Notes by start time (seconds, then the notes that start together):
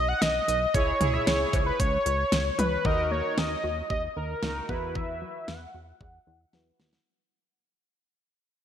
Already playing: B1
0.08 F#5
0.21 B1 D#5, snare, closed hi-hat
0.48 B1, closed hi-hat
0.74 C#2 E4 G#4 C#5, kick, closed hi-hat
1.01 C#2 E4 G#4 C#5, closed hi-hat, mid tom
1.13 E5
1.27 C#2 C#5, snare, closed hi-hat
1.53 C#2, kick, closed hi-hat, cowbell
1.66 B4
1.80 C#2 C#5, kick, closed hi-hat
2.06 C#2, closed hi-hat
2.32 C#2, snare, closed hi-hat
2.59 C#2 B4, closed hi-hat, mid tom
2.85 D#2 D#3 D#4 F#4 A#4 D#5, kick
3.11 A#3 C#5
3.38 D#2 C#4 D#5, snare
3.64 D#2 F#4
3.90 D#2 D#5, kick
4.16 D#2 D#3 A#4
4.43 C#2 A#3 D#4 F#4 A#4, snare
4.69 E2 B3 E4 F#4 B4, kick
4.95 E3 E5, kick
5.22 F#3
5.48 E2 B3 F#5, snare
5.74 E2 F#4
6.00 E2 E5 F#5, kick
6.27 E2 E3
6.53 E2 F#3 E4 F#4 B4, snare
6.80 D#2 B3, snare
6.93 snare